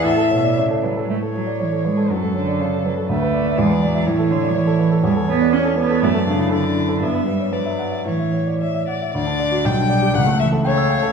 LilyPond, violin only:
\new Staff \with { instrumentName = "Violin" } { \time 2/4 \key a \major \tempo 4 = 119 e''4 r4 | cis''2 | a'2 | b'4 d''4 |
cis''2 | \key d \major cis''4 cis''4 | d''4 d''4 | e''4 d''4 |
cis''4 e''8 d''8 | d''4 g''4 | fis''8 e''8 cis''4 | }